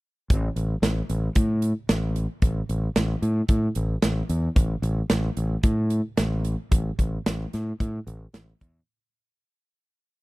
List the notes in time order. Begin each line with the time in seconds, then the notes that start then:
0.30 A1, kick, closed hi-hat
0.56 A1, closed hi-hat
0.82 A1, snare, closed hi-hat
1.09 A1, closed hi-hat
1.35 A2, kick, closed hi-hat
1.62 closed hi-hat
1.89 A1, snare, closed hi-hat
2.16 closed hi-hat
2.42 A1, kick, closed hi-hat
2.69 A1, closed hi-hat
2.96 A1, snare, closed hi-hat
3.22 A2, closed hi-hat
3.49 A2, kick, closed hi-hat
3.75 A1, closed hi-hat
4.02 A1, snare, closed hi-hat
4.29 E2, closed hi-hat
4.56 A1, kick, closed hi-hat
4.82 A1, closed hi-hat
5.10 A1, snare, closed hi-hat
5.37 A1, closed hi-hat
5.63 A2, kick, closed hi-hat
5.90 closed hi-hat
6.17 A1, snare, closed hi-hat
6.45 closed hi-hat
6.71 A1, kick, closed hi-hat
6.99 A1, kick, closed hi-hat
7.26 A1, snare, closed hi-hat
7.53 A2, snare, closed hi-hat
7.80 A2, kick, closed hi-hat
8.07 A1, closed hi-hat
8.34 A1, snare, closed hi-hat
8.61 E2, kick, closed hi-hat